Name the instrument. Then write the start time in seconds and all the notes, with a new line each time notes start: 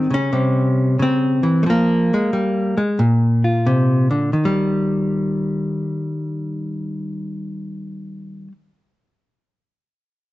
hollow-body jazz guitar
Already playing: D#3 G3 C4 D#4
0.10 C#3 C#4
0.33 C3 G3
0.99 C#3 C4
1.43 E3
1.63 F3 A3
1.70 A#3
2.14 G#3
2.33 G3
2.77 G#3
2.99 A#2
3.44 F4
3.66 C3
4.11 D3
4.33 D#3
4.45 G3